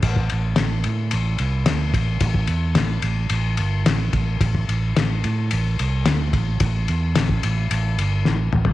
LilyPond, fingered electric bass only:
\new Staff \with { instrumentName = "Fingered electric bass" } { \clef bass \time 4/4 \key a \minor \tempo 4 = 110 a,,8 a,,8 a,,8 a,8 a,,8 c,8 d,8 a,,8 | a,,8 e,8 a,,8 a,,8 a,,8 g,,8 a,,8 a,,8 | a,,8 a,,8 a,,8 a,8 a,,8 c,8 d,8 a,,8 | a,,8 e,8 a,,8 a,,8 a,,8 g,,8 a,,8 a,,8 | }